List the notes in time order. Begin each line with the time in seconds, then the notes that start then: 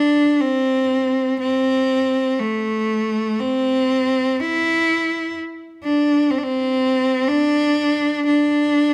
Already playing: D4
0.41 C4
1.40 C4
2.40 A3
3.40 C4
4.39 E4
5.84 D4
6.31 C4
6.38 D4
6.44 C4
7.28 D4
8.27 D4